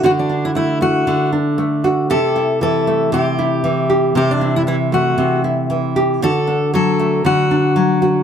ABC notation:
X:1
M:4/4
L:1/16
Q:"Swing 16ths" 1/4=116
K:Ador
V:1 name="Steel-string acoustic guitar"
F D2 E E2 F4 z6 | A4 A4 G8 | G D2 E E2 F4 z6 | A4 A4 F8 |]
V:2 name="Nylon-string guitar"
[D,A,DF]2 D2 A,2 A,2 D,2 D2 A,2 F2 | [C,G]2 E2 E,2 A,2 C,2 E2 E,2 G2 | C,2 E2 E,2 A,2 C,2 E2 E,2 G2 | [D,F]2 D2 F,2 A,2 D,2 D2 F,2 F2 |]